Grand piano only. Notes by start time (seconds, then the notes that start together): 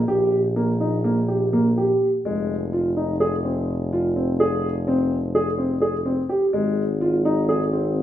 0.08 G4
0.56 A#3
0.80 D#4
1.04 A#3
1.28 G4
1.53 A#3
1.78 G4
2.25 G#3
2.73 F4
2.97 D#4
3.20 G#4
3.45 C4
3.93 F4
4.16 C4
4.40 G#4
4.88 C4
5.35 G#4
5.58 C4
5.82 G#4
6.06 C4
6.29 G4
6.53 G#3
7.01 F4
7.25 D#4
7.49 G#4
7.73 C4